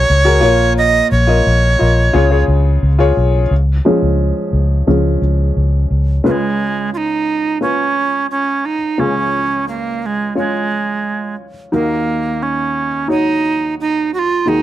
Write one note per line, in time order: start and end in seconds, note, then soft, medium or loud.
0.00 0.46 C#3 medium
0.00 0.25 F#4 medium
0.00 0.25 G#4 medium
0.00 0.14 A#4 medium
0.00 0.73 C#5 loud
0.00 0.46 D#5 medium
0.10 0.44 C#2 loud
0.25 0.43 F#4 medium
0.25 0.43 G#4 medium
0.25 0.40 A#4 medium
0.41 1.00 A#1 loud
0.41 1.41 A#2 medium
0.41 1.13 F4 loud
0.41 1.13 A#4 medium
0.41 1.14 C#5 loud
0.78 1.09 D#5 loud
1.11 1.40 A#1 loud
1.11 2.44 C#5 medium
1.27 1.70 F4 medium
1.27 1.71 A#4 medium
1.27 1.71 D#5 medium
1.47 1.74 A#1 loud
1.79 2.09 A#1 medium
1.79 2.12 F4 medium
1.79 2.14 A#4 medium
1.79 2.14 D#5 medium
2.13 2.42 C#2 medium
2.13 3.13 C#3 medium
2.13 2.28 F4 medium
2.13 2.28 G#4 medium
2.13 2.29 C#5 loud
2.30 2.87 F4 medium
2.30 2.88 G#4 medium
2.30 2.88 C#5 medium
2.48 2.76 C#2 loud
2.83 3.11 C#2 loud
2.99 3.41 F4 medium
2.99 3.42 G#4 medium
2.99 3.42 C#5 loud
3.17 3.45 B1 medium
3.51 3.79 C#2 medium
3.85 4.86 F3 soft
3.85 4.86 G#3 soft
3.85 4.86 C#4 medium
4.02 4.31 C#2 medium
4.53 4.81 C#2 medium
4.87 5.16 C#2 medium
4.87 5.18 F3 soft
4.87 5.18 G#3 soft
4.87 5.19 C#4 soft
5.22 5.50 C#2 loud
5.57 5.85 C#2 loud
5.91 6.19 C#2 medium
6.24 8.95 C#2 soft
6.24 8.95 C#3 soft
6.24 6.32 A#3 medium
6.24 7.37 C#4 medium
6.24 7.38 F4 soft
6.24 7.38 B4 medium
6.31 6.90 G#3 medium
6.94 7.58 D#4 medium
6.94 6.98 F4 medium
7.61 8.74 C#4 soft
7.61 8.26 C#4 medium
7.61 8.75 F4 soft
7.61 8.75 B4 medium
8.31 8.67 C#4 medium
8.65 9.01 D#4 medium
8.98 11.69 C#2 soft
8.98 11.69 C#3 soft
8.98 10.11 C#4 medium
8.98 9.68 C#4 medium
8.98 10.12 F4 medium
8.98 10.12 G#4 medium
9.68 10.02 A#3 medium
10.02 10.36 G#3 medium
10.02 10.07 A#3 medium
10.35 11.35 G#3 medium
10.35 11.48 C#4 soft
10.35 11.49 F4 medium
10.35 11.49 C#5 medium
11.72 14.43 D#2 soft
11.72 14.42 D#3 soft
11.72 12.44 A#3 medium
11.72 12.85 D#4 medium
11.72 12.85 F#4 soft
11.72 12.86 A#4 medium
12.43 13.10 C#4 medium
13.08 14.22 D#4 medium
13.08 13.75 D#4 medium
13.08 14.22 F#4 soft
13.08 14.23 C#5 medium
13.80 14.11 D#4 medium
14.14 14.20 F#4 medium
14.19 14.50 F4 medium
14.46 14.62 D#2 soft
14.46 14.62 D#3 soft
14.46 14.62 D#4 medium
14.46 14.62 F#4 soft
14.46 14.62 G#4 medium